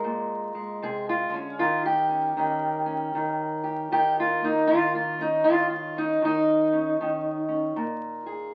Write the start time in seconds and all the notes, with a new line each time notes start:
Already playing: G#3 A#4
0.04 A#2
0.55 G#3
0.82 C3 G#4
1.09 F4
1.29 D3
1.34 C#4
1.59 D#3 F4
1.86 G4
2.09 C#4
2.37 D#3 C#4
2.86 C#4
3.15 D#3
3.63 G4
3.92 D#3 G4
4.20 F4
4.41 A#3 D#4
4.67 D#3 F4
4.95 F4
5.19 C#4 D#4
5.44 D#3 F4
5.70 F4
5.96 C#4 D#4
6.22 D#3 D#4
6.73 C#4
7.00 D#3 C#4
7.49 C#4
7.76 A#2
8.26 G#4